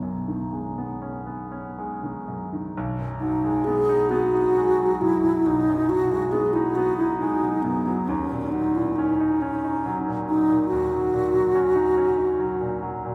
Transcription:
0.00 2.71 B1 soft
0.00 0.03 F#2 soft
0.00 0.41 F#2 soft
0.00 0.28 D#3 soft
0.00 0.53 G#3 soft
0.00 0.78 B3 soft
0.00 1.20 B3 medium
0.00 1.02 C#4 soft
0.28 0.67 D#3 soft
0.53 0.91 G#3 soft
0.78 1.16 B3 soft
1.02 1.41 C#4 soft
1.27 1.66 B3 soft
1.52 1.91 C#4 soft
1.78 2.18 G#3 soft
2.03 2.43 D#3 soft
2.28 2.67 F#2 soft
2.53 2.76 D#3 soft
2.77 5.42 B1 medium
3.00 3.35 F#2 soft
3.20 3.57 F#3 soft
3.20 3.66 D#4 medium
3.45 3.79 G#3 soft
3.64 4.02 B3 soft
3.64 4.11 G#4 medium
3.89 4.24 D#4 soft
4.09 4.46 B3 medium
4.09 5.03 F#4 medium
4.34 4.70 D#4 soft
4.57 4.92 G#3 soft
4.80 5.15 F#3 soft
5.01 5.37 F#2 soft
5.01 5.48 E4 medium
5.24 5.59 F#3 soft
5.46 8.05 B1 soft
5.46 5.91 D#4 loud
5.69 6.03 F#2 soft
5.89 6.25 F#3 soft
5.89 6.33 F#4 medium
6.12 6.46 G#3 soft
6.32 6.68 B3 soft
6.32 6.55 G#4 medium
6.53 6.90 D#4 soft
6.53 6.77 E4 medium
6.75 7.12 B3 medium
6.75 6.97 F#4 loud
6.97 7.34 D#4 soft
6.97 7.18 E4 medium
7.19 7.56 G#3 soft
7.19 7.64 D#4 medium
7.43 7.78 F#3 soft
7.62 7.99 F#2 soft
7.62 8.09 B3 medium
7.87 8.08 F#3 medium
8.08 10.67 D#2 medium
8.08 8.53 C#4 medium
8.32 8.67 A#2 soft
8.52 8.89 F#3 soft
8.52 8.77 D#4 medium
8.75 9.11 A#2 soft
8.75 8.97 E4 medium
8.96 9.33 C#4 soft
8.96 9.43 D#4 medium
9.20 9.55 D#4 soft
9.42 9.98 C#4 medium
9.42 9.77 C#4 medium
9.64 9.99 D#4 soft
9.86 10.20 F#3 medium
10.08 10.42 A#2 soft
10.28 10.63 F#3 soft
10.28 10.68 D#4 medium
10.49 10.83 A#2 soft
10.68 12.78 F#4 loud
10.72 13.15 D#2 medium
10.92 11.26 F#3 soft
11.14 11.47 A#2 soft
11.34 11.68 F#3 soft
11.55 11.89 C#4 soft
11.75 12.10 D#4 medium
11.97 12.32 C#4 soft
12.18 12.53 D#4 soft
12.40 12.74 F#3 soft
12.61 12.96 A#2 soft
12.83 13.15 F#3 soft
13.05 13.15 A#2 soft

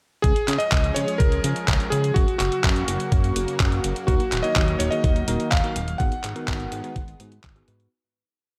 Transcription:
0.22 0.34 C#2 loud
0.22 2.14 F3 medium
0.22 2.14 G#3 medium
0.22 2.14 C#4 medium
0.22 0.60 G#4 loud
0.22 2.14 G#4 medium
0.22 kick loud
0.22 closed hi-hat medium
0.36 closed hi-hat soft
0.48 0.58 C#3 medium
0.48 clap medium
0.48 closed hi-hat loud
0.58 0.96 D#5 loud
0.58 closed hi-hat soft
0.72 0.92 C#2 loud
0.72 kick loud
0.72 clap loud
0.72 closed hi-hat medium
0.84 closed hi-hat soft
0.94 1.06 C#3 loud
0.94 1.20 C#5 loud
0.94 closed hi-hat loud
1.08 closed hi-hat soft
1.18 1.40 C#2 loud
1.18 1.87 A#4 loud
1.18 kick loud
1.18 closed hi-hat medium
1.32 closed hi-hat soft
1.44 1.54 C#3 loud
1.44 closed hi-hat loud
1.56 closed hi-hat soft
1.68 1.78 C#2 medium
1.68 kick loud
1.68 clap loud
1.68 closed hi-hat medium
1.80 closed hi-hat soft
1.90 2.12 C#3 loud
1.90 2.16 G#4 medium
1.90 closed hi-hat medium
2.04 closed hi-hat soft
2.14 2.26 F#2 loud
2.14 4.06 C#3 medium
2.14 5.96 F#3 medium
2.14 5.96 A#3 medium
2.14 2.37 F#4 medium
2.14 7.88 F#4 medium
2.14 kick loud
2.14 closed hi-hat medium
2.28 closed hi-hat soft
2.38 2.50 F#1 medium
2.38 3.79 F#4 loud
2.38 clap medium
2.38 closed hi-hat medium
2.52 closed hi-hat soft
2.64 2.84 F#2 loud
2.64 kick loud
2.64 clap loud
2.64 closed hi-hat medium
2.76 closed hi-hat soft
2.88 2.98 F#1 loud
2.88 closed hi-hat medium
3.00 closed hi-hat soft
3.12 3.32 F#2 loud
3.12 kick loud
3.12 closed hi-hat medium
3.24 closed hi-hat soft
3.36 3.46 F#1 loud
3.36 closed hi-hat loud
3.48 closed hi-hat soft
3.60 3.80 F#2 medium
3.60 kick loud
3.60 clap loud
3.60 closed hi-hat medium
3.72 closed hi-hat soft
3.84 3.94 F#1 medium
3.84 closed hi-hat medium
3.96 closed hi-hat soft
4.07 4.18 D#2 loud
4.07 5.98 D#3 medium
4.07 4.21 A#3 medium
4.07 4.21 D#4 medium
4.07 4.45 F#4 medium
4.07 4.21 F#4 medium
4.07 4.21 A#4 loud
4.07 kick loud
4.07 closed hi-hat medium
4.20 closed hi-hat soft
4.32 4.42 D#1 medium
4.32 clap medium
4.32 closed hi-hat medium
4.43 4.89 A#3 loud
4.43 4.89 D#4 medium
4.43 4.89 F#4 medium
4.43 4.89 C#5 loud
4.43 4.80 D#5 loud
4.43 closed hi-hat soft
4.56 4.76 D#2 loud
4.56 kick loud
4.56 clap loud
4.56 closed hi-hat medium
4.68 closed hi-hat soft
4.79 4.90 D#1 loud
4.79 4.92 C#5 loud
4.79 closed hi-hat loud
4.91 5.05 A#3 medium
4.91 5.05 D#4 medium
4.91 5.05 F#4 medium
4.91 5.05 G#4 loud
4.91 5.53 D#5 loud
4.91 closed hi-hat soft
5.04 5.24 D#2 loud
5.04 kick loud
5.04 closed hi-hat medium
5.16 closed hi-hat soft
5.28 5.38 D#1 loud
5.28 5.48 A#3 loud
5.28 5.48 D#4 medium
5.28 5.48 F#4 loud
5.28 5.48 A#4 loud
5.28 closed hi-hat medium
5.40 closed hi-hat soft
5.51 5.62 D#2 medium
5.51 6.01 F5 loud
5.51 kick loud
5.51 clap loud
5.51 closed hi-hat medium
5.64 5.77 A#3 loud
5.64 5.77 D#4 medium
5.64 5.77 F#4 medium
5.64 5.77 A#4 loud
5.64 closed hi-hat soft
5.76 5.96 D#1 loud
5.76 closed hi-hat medium
5.88 closed hi-hat soft
5.98 6.10 G#1 loud
5.98 7.90 D#3 medium
5.98 7.90 G#3 medium
5.98 7.90 B3 medium
5.98 6.13 B3 medium
5.98 6.13 D#4 medium
5.98 6.13 F#4 medium
5.98 6.13 G#4 loud
5.98 7.39 F#5 loud
5.98 kick loud
5.98 closed hi-hat medium
6.12 closed hi-hat soft
6.24 6.34 G#2 medium
6.24 clap medium
6.24 closed hi-hat medium
6.36 6.81 B3 loud
6.36 6.81 D#4 medium
6.36 6.81 F#4 medium
6.36 6.81 A#4 loud
6.36 closed hi-hat soft
6.48 6.68 G#1 medium
6.48 kick loud
6.48 clap loud
6.48 closed hi-hat medium
6.60 closed hi-hat soft
6.72 6.82 G#2 loud
6.72 closed hi-hat medium
6.84 6.97 B3 medium
6.84 6.97 D#4 medium
6.84 6.97 F#4 medium
6.84 6.97 G#4 loud
6.84 closed hi-hat soft
6.96 7.16 G#1 loud
6.96 kick loud
6.96 closed hi-hat medium
7.08 closed hi-hat soft
7.20 7.40 G#2 medium
7.20 7.33 B3 medium
7.20 7.33 D#4 medium
7.20 7.33 F#4 medium
7.20 7.33 G#4 loud
7.20 closed hi-hat medium
7.32 closed hi-hat soft
7.44 7.64 G#1 medium
7.44 kick loud
7.44 clap loud
7.44 closed hi-hat medium
7.56 7.66 B3 loud
7.56 7.66 D#4 medium
7.56 7.66 F#4 medium
7.56 7.66 G#4 loud
7.56 closed hi-hat soft
7.68 7.88 G#2 medium
7.68 7.88 B3 medium
7.68 7.88 D#4 medium
7.68 7.88 F#4 medium
7.68 7.88 B4 loud
7.68 closed hi-hat medium
7.80 closed hi-hat soft

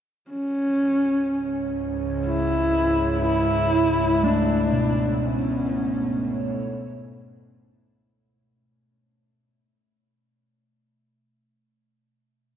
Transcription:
0.30 8.29 C#2 medium
0.30 8.28 G#2 medium
0.30 1.78 C#4 medium
0.30 5.82 C#5 medium
1.01 4.22 G#4 medium
1.25 8.16 E4 medium
2.07 5.81 E5 medium
2.27 3.21 E4 medium
3.25 4.25 E4 loud
4.24 10.14 A3 medium
4.24 5.27 D4 medium
4.28 8.19 B3 medium
4.73 10.63 B2 medium
5.25 6.71 C#4 medium
5.70 8.17 A4 medium
6.00 8.17 C#5 medium

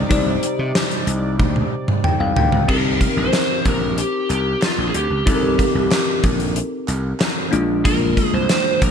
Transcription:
0.00 2.65 C3 medium
0.00 2.65 G3 medium
0.00 2.65 D#4 medium
0.00 2.65 D5 medium
0.09 0.35 C2 medium
0.09 2.64 D#4 medium
0.09 2.64 G4 medium
0.09 2.65 C5 medium
0.09 2.65 D5 medium
0.09 kick loud
0.09 closed hi-hat medium
0.43 closed hi-hat medium
0.59 0.71 C3 medium
0.75 snare loud
0.75 closed hi-hat medium
0.91 closed hi-hat soft
1.07 1.39 C2 medium
1.07 closed hi-hat medium
1.39 1.64 D2 medium
1.39 kick medium
1.39 high tom medium
1.56 high tom soft
1.88 mid tom medium
2.04 2.19 G5 medium
2.04 mid tom medium
2.20 2.32 C2 medium
2.20 2.35 F5 medium
2.36 2.48 D2 medium
2.36 2.67 G5 medium
2.36 floor tom medium
2.52 2.65 C#2 medium
2.52 floor tom medium
2.68 3.05 C2 loud
2.68 5.22 C4 medium
2.68 2.75 D4 soft
2.68 5.23 G4 medium
2.68 3.14 A#4 medium
2.68 5.23 A#4 medium
2.68 kick loud
2.68 crash medium
2.75 5.25 D#4 soft
3.01 kick medium
3.01 closed hi-hat medium
3.17 3.29 A#1 medium
3.17 3.68 C5 loud
3.33 snare loud
3.33 clap medium
3.33 closed hi-hat medium
3.65 4.02 A#1 medium
3.65 3.99 A#4 medium
3.65 kick medium
3.65 closed hi-hat medium
3.98 4.30 G4 medium
3.98 closed hi-hat medium
4.30 4.54 C2 medium
4.30 4.64 G4 medium
4.30 clap medium
4.30 closed hi-hat medium
4.62 4.89 F4 medium
4.62 snare loud
4.62 clap medium
4.62 closed hi-hat medium
4.78 4.90 A#1 medium
4.87 4.95 G#4 medium
4.94 5.06 D2 medium
4.94 6.20 G4 medium
4.94 closed hi-hat medium
5.10 5.22 C#2 medium
5.26 5.63 C2 loud
5.26 7.48 C4 medium
5.26 7.48 D#4 medium
5.26 7.49 G4 medium
5.26 5.34 A4 medium
5.26 kick loud
5.26 closed hi-hat medium
5.34 7.52 A#4 medium
5.59 kick medium
5.59 closed hi-hat medium
5.75 5.87 C2 medium
5.91 snare loud
5.91 clap medium
5.91 closed hi-hat medium
6.24 6.60 A#1 medium
6.24 kick medium
6.24 closed hi-hat medium
6.40 closed hi-hat soft
6.56 closed hi-hat medium
6.88 7.12 C2 medium
6.88 clap medium
6.88 closed hi-hat medium
7.20 snare loud
7.20 clap medium
7.20 closed hi-hat medium
7.51 8.13 A#1 medium
7.51 8.91 G#3 medium
7.51 8.91 A#3 medium
7.51 8.91 D4 medium
7.51 8.91 F4 medium
7.51 closed hi-hat medium
7.85 8.35 A#4 medium
7.85 kick loud
7.85 closed hi-hat medium
8.17 kick medium
8.17 closed hi-hat medium
8.33 8.45 C2 medium
8.33 8.78 C5 loud
8.50 snare loud
8.50 clap medium
8.50 closed hi-hat medium
8.82 8.91 A#1 medium
8.82 8.91 A#4 medium
8.82 kick medium
8.82 closed hi-hat medium

